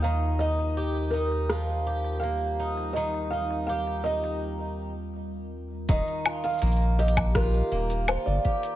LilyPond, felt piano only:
\new Staff \with { instrumentName = "Felt piano" } { \time 4/4 \key ees \major \tempo 4 = 82 f''8 ees''4 bes'4. f''4 | ees''8 f''8 f''8 ees''8 r2 | ees''8. f''8. ees''8 bes'4 c''16 d''8. | }